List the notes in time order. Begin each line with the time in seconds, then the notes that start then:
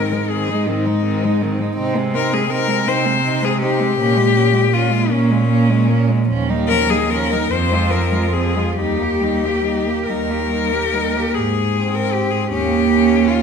Already playing: G#2 D#3 C4 A#4
0.11 G#3 D#4
0.29 D#3 C4 G#4
0.48 G#3 D#4
0.66 G#2 D#3 C4 D#4
0.86 G#3 D#4
1.05 D#3 C4
1.23 G#3 D#4
1.41 D#3 C4
1.59 G#3 D#4
1.76 C3 C4 D#4
1.97 G#3 C4
2.14 C4 D#4 A#4
2.33 G#3 C4 G#4
2.50 C4 D#4 A#4
2.68 G#3 C4
2.86 C3 C4 D#4 C5
3.05 G#3 C4
3.23 C4 D#4
3.42 G#3 C4 G#4
3.61 C4 D#4 G4
3.80 G#3 C4
3.98 A#2 A#3 C#4
4.15 G#3 A#3
4.36 A#3 C#4
4.53 G#3 A#3
4.71 A#3 C#4 F4
4.90 G#3 A#3
5.09 A#2 A#3 C#4
5.30 G#3 A#3
5.48 A#3 C#4
5.68 G#3 A#3
5.88 A#3 C#4
6.08 G#3 A#3
6.28 D#2 F3 C#4
6.48 G3 D#4
6.68 F3 C#4 A#4
6.88 G3 D#4 G#4
7.09 F3 C#4 A#4
7.31 G3 D#4
7.51 F2 F3 C4 C5
7.71 G#3 F4
7.90 F3 A#4
7.94 C4
8.12 G#3 F4
8.32 F3 C4 G#4
8.55 G#3 F4
8.77 D#2 G3 D#4 G4
8.99 A#3
9.03 G4
9.21 G3 D#4
9.44 A#3 G4
9.64 G3 D#4
9.87 A#3 G4
10.06 D#2 G3 A#4
10.10 D#4
10.30 A#3 G4
10.50 G3 D#4
10.72 A#3 G4
10.93 G3 D#4
11.15 A#3 G4
11.35 G#2 G#4
11.76 C4
11.95 A#4
12.13 G4
12.31 G#4
12.50 D#2 A#3 C#4 G4
12.91 C#4
13.28 F4